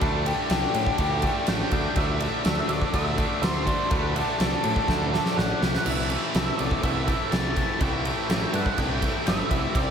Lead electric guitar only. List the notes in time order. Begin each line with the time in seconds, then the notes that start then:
0.01 A4
0.26 G4
1.49 G5
1.98 E5
2.70 D5
2.94 E5
3.44 C5
3.92 B4
4.17 A4
5.37 F#5
5.86 E5
6.58 D5
6.84 E5
7.31 A5
7.82 G5
8.55 F#5
8.78 G5
9.28 E5
9.76 D5